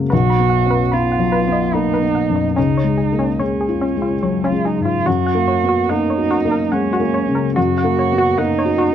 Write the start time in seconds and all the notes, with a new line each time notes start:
Already playing: C#3 G#3 A#3 B3 F#4
0.10 B1 F#4 B4
0.30 B5
0.39 B3
0.50 F#5
0.65 C#4
0.70 B4
0.92 B3 F4 B5
1.12 F#5
1.19 F#3
1.32 B4
1.48 B3
1.52 D#5
1.73 A#3 D#4 B5
1.94 B4
2.02 B3
2.15 F#5
2.29 F#2
2.35 D#5
2.55 C#2 C#4 D#4
2.77 C#5
2.84 G#3
2.98 G#4
3.12 A#3
3.19 C#4
3.39 G#3 C#4 C#5
3.61 G#4
3.69 F4
3.81 C#4
3.97 G#3
4.02 F4
4.23 F#3 C#5
4.44 C#4 F4
4.52 G#3
4.65 D#4 G#4
4.80 G#2
4.85 F4
5.06 F#2 F#4
5.27 F#5
5.35 A#3
5.48 C#5
5.64 B3
5.69 F#4
5.89 A#3 D#4 F#5
6.10 C#5
6.18 F#4
6.31 F#4
6.45 A#3
6.52 A#4
6.72 G#3 C#4 F#5
6.93 F#4
7.00 A#3
7.14 C#5
7.28 C#3
7.35 A#4
7.56 F#2 F#4
7.78 F#5
7.84 A#3
7.99 C#5
8.12 B3
8.18 F#4
8.38 A#3 D#4 F#5
8.59 C#5
8.66 F#4
8.78 F#4